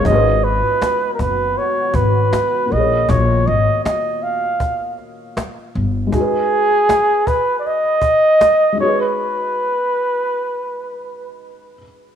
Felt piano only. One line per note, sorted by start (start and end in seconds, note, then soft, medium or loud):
0.00 2.64 G#3 medium
0.00 2.66 D#4 medium
0.00 0.25 C#5 medium
0.07 2.68 F#4 medium
0.07 2.70 G#4 medium
0.14 2.71 B4 medium
2.66 5.68 A#2 medium
2.66 5.70 A#3 medium
2.73 5.71 F4 medium
2.73 5.73 G#4 medium
2.80 5.75 C#5 medium
6.07 8.71 G#3 medium
6.07 8.73 D#4 medium
6.14 8.75 F#4 medium
6.14 8.77 G#4 medium
6.20 8.78 B4 medium
8.72 11.75 G#3 medium
8.72 11.77 D#4 medium
8.79 11.79 F#4 medium
8.79 11.80 G#4 medium
8.87 11.82 B4 medium